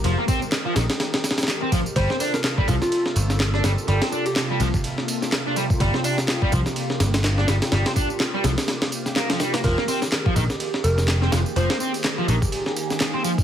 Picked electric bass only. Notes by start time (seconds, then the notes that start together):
0.04 F1
0.76 A#1
1.96 G1
2.68 C2
3.16 G1
3.64 G1
3.88 G1
4.60 C2
5.80 G1
6.52 C2
7.00 G1
7.48 G1
7.72 G1
8.44 C2
9.64 F1
10.36 A#1
10.84 F1
11.32 F1
11.56 F1
12.28 A#1